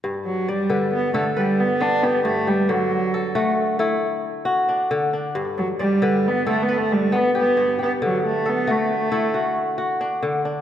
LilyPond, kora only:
<<
  \new Staff \with { instrumentName = "Kora" } { \time 12/8 \key g \major \tempo 4. = 90 r4 d''8 b'4 a'8 b'4. g'4 g'8~ | g'8 r8 a'8 fis'4 e'4. r8 d'4 d'8~ | d'8 r8 d''8 b'4 a'8 b'4. g'4 g'8~ | g'8 r8 a'8 fis'4 e'8 fis'4. d'4 d'8 | }
  \new Staff \with { instrumentName = "Kora" } { \clef bass \time 12/8 \key g \major g,4 r8 d4 d4 r8 b4 g,4 | d4 r8 a4 a4 r8 fis'4 d4 | g,4 r8 d4 d4 r8 b4 g,4 | d4 r8 a4 a4 r8 fis'4 d4 | }
>>